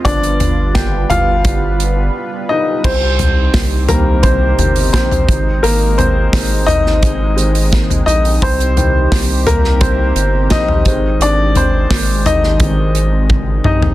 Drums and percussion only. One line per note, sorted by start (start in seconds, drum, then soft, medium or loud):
0.05 kick medium
0.05 closed hi-hat medium
0.23 closed hi-hat medium
0.40 closed hi-hat medium
0.40 floor tom medium
0.75 kick loud
0.75 snare loud
0.75 closed hi-hat medium
1.10 closed hi-hat medium
1.10 floor tom medium
1.45 kick loud
1.45 closed hi-hat medium
1.80 closed hi-hat medium
2.84 kick medium
2.84 crash medium
3.19 floor tom medium
3.19 hi-hat pedal medium
3.19 open hi-hat medium
3.54 kick loud
3.54 snare loud
3.54 hi-hat pedal medium
3.54 open hi-hat loud
3.88 floor tom medium
3.88 hi-hat pedal medium
3.88 open hi-hat medium
4.23 kick loud
4.23 hi-hat pedal medium
4.23 open hi-hat medium
4.59 floor tom medium
4.59 hi-hat pedal medium
4.59 open hi-hat medium
4.76 open hi-hat medium
4.94 kick loud
4.94 snare loud
4.94 hi-hat pedal medium
4.94 open hi-hat loud
5.11 floor tom medium
5.11 hi-hat pedal medium
5.29 kick loud
5.29 hi-hat pedal medium
5.29 open hi-hat medium
5.64 hi-hat pedal medium
5.64 open hi-hat medium
5.98 floor tom medium
5.98 hi-hat pedal medium
5.98 open hi-hat medium
6.33 kick loud
6.33 snare loud
6.33 hi-hat pedal medium
6.33 open hi-hat loud
6.68 floor tom medium
6.68 hi-hat pedal medium
6.68 open hi-hat medium
6.86 snare soft
7.03 kick loud
7.03 hi-hat pedal medium
7.03 open hi-hat loud
7.38 hi-hat pedal medium
7.38 open hi-hat medium
7.55 open hi-hat medium
7.72 kick loud
7.72 snare loud
7.72 hi-hat pedal medium
7.72 open hi-hat medium
7.90 floor tom medium
7.90 hi-hat pedal medium
8.08 hi-hat pedal medium
8.08 open hi-hat medium
8.25 open hi-hat medium
8.42 kick medium
8.42 hi-hat pedal medium
8.42 open hi-hat medium
8.60 hi-hat pedal medium
8.77 floor tom medium
8.77 hi-hat pedal medium
8.77 open hi-hat medium
9.12 kick loud
9.12 snare loud
9.12 hi-hat pedal medium
9.12 open hi-hat loud
9.47 floor tom medium
9.47 hi-hat pedal medium
9.47 open hi-hat medium
9.64 snare soft
9.81 kick loud
9.81 hi-hat pedal medium
9.81 open hi-hat loud
10.16 hi-hat pedal medium
10.16 open hi-hat medium
10.50 kick medium
10.50 snare loud
10.50 hi-hat pedal medium
10.50 open hi-hat medium
10.68 floor tom medium
10.85 kick medium
10.85 hi-hat pedal medium
10.85 open hi-hat medium
11.21 hi-hat pedal medium
11.21 open hi-hat medium
11.55 floor tom medium
11.55 hi-hat pedal medium
11.55 open hi-hat medium
11.90 kick loud
11.90 snare loud
11.90 hi-hat pedal medium
11.90 open hi-hat loud
12.26 floor tom medium
12.26 hi-hat pedal medium
12.26 open hi-hat medium
12.43 snare soft
12.60 kick loud
12.60 hi-hat pedal medium
12.60 open hi-hat loud
12.95 hi-hat pedal medium
12.95 open hi-hat medium
13.30 kick loud
13.30 high tom medium
13.64 mid tom medium
13.82 floor tom loud